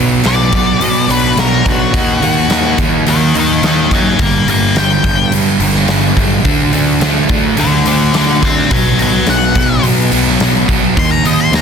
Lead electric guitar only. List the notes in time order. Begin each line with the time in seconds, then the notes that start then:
0.28 D5
1.11 B4
1.40 A#4
1.69 F#4
3.09 A#4 D#5
3.39 A#4 D#5
3.67 A#4 D#5
3.94 F#5 A#5
4.22 F5 A#5
4.49 F5 A#5
4.78 G5
7.60 A4 D5
7.87 A4 D5
8.17 A4 D5
8.45 G5 C6
8.72 F#5 A#5
9.02 F#5 A#5
9.30 F#5
10.99 C6
11.11 A#5
11.27 D#5
11.40 C6
11.55 A#5